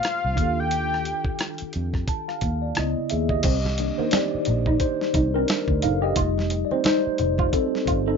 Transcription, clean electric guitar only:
0, 0, Header, 1, 3, 480
1, 0, Start_track
1, 0, Tempo, 681818
1, 498, Time_signature, 4, 2, 24, 8
1, 5754, End_track
2, 0, Start_track
2, 0, Title_t, "Clean electric guitar"
2, 0, Program_c, 0, 27
2, 2427, Note_on_c, 0, 60, 82
2, 2516, Note_off_c, 0, 60, 0
2, 2811, Note_on_c, 0, 58, 70
2, 2871, Note_off_c, 0, 58, 0
2, 2911, Note_on_c, 0, 60, 80
2, 2998, Note_off_c, 0, 60, 0
2, 3289, Note_on_c, 0, 63, 70
2, 3350, Note_off_c, 0, 63, 0
2, 3624, Note_on_c, 0, 63, 71
2, 3714, Note_off_c, 0, 63, 0
2, 3771, Note_on_c, 0, 60, 70
2, 3831, Note_off_c, 0, 60, 0
2, 4105, Note_on_c, 0, 63, 77
2, 4194, Note_off_c, 0, 63, 0
2, 4238, Note_on_c, 0, 67, 75
2, 4303, Note_off_c, 0, 67, 0
2, 4342, Note_on_c, 0, 65, 80
2, 4433, Note_off_c, 0, 65, 0
2, 4728, Note_on_c, 0, 60, 72
2, 4789, Note_off_c, 0, 60, 0
2, 4823, Note_on_c, 0, 63, 69
2, 4913, Note_off_c, 0, 63, 0
2, 5206, Note_on_c, 0, 65, 78
2, 5268, Note_off_c, 0, 65, 0
2, 5547, Note_on_c, 0, 65, 69
2, 5635, Note_off_c, 0, 65, 0
2, 5687, Note_on_c, 0, 63, 75
2, 5748, Note_off_c, 0, 63, 0
2, 5754, End_track
3, 0, Start_track
3, 0, Title_t, "Muted clean electric guitar strokes"
3, 2671, Note_on_c, 9, 29, 41
3, 2741, Note_off_c, 9, 29, 0
3, 3144, Note_on_c, 9, 29, 39
3, 3214, Note_off_c, 9, 29, 0
3, 3385, Note_on_c, 9, 29, 42
3, 3456, Note_off_c, 9, 29, 0
3, 3867, Note_on_c, 9, 29, 44
3, 3938, Note_off_c, 9, 29, 0
3, 4584, Note_on_c, 9, 29, 42
3, 4655, Note_off_c, 9, 29, 0
3, 5063, Note_on_c, 9, 29, 39
3, 5134, Note_off_c, 9, 29, 0
3, 5307, Note_on_c, 9, 29, 43
3, 5377, Note_off_c, 9, 29, 0
3, 5754, End_track
0, 0, End_of_file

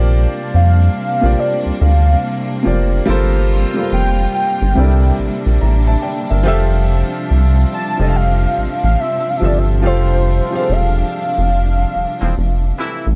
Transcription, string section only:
0, 0, Header, 1, 2, 480
1, 0, Start_track
1, 0, Key_signature, -1, "major"
1, 0, Tempo, 845070
1, 1743, Time_signature, 4, 2, 24, 8
1, 7471, End_track
2, 0, Start_track
2, 0, Title_t, "String section"
2, 0, Program_c, 0, 48
2, 0, Note_on_c, 0, 48, 86
2, 0, Note_on_c, 0, 55, 76
2, 0, Note_on_c, 0, 58, 79
2, 0, Note_on_c, 0, 62, 82
2, 1722, Note_off_c, 0, 62, 0
2, 1723, Note_off_c, 0, 55, 0
2, 1738, Note_on_c, 0, 65, 97
2, 1741, Note_on_c, 0, 55, 74
2, 2677, Note_off_c, 0, 48, 0
2, 2691, Note_off_c, 0, 65, 0
2, 2700, Note_on_c, 0, 62, 86
2, 2705, Note_on_c, 0, 50, 79
2, 3638, Note_off_c, 0, 58, 0
2, 3654, Note_off_c, 0, 50, 0
2, 3660, Note_on_c, 0, 53, 76
2, 3663, Note_on_c, 0, 48, 79
2, 5559, Note_off_c, 0, 62, 0
2, 5577, Note_on_c, 0, 62, 84
2, 7471, Note_off_c, 0, 48, 0
2, 7471, Note_off_c, 0, 53, 0
2, 7471, Note_off_c, 0, 55, 0
2, 7471, Note_off_c, 0, 62, 0
2, 7471, End_track
0, 0, End_of_file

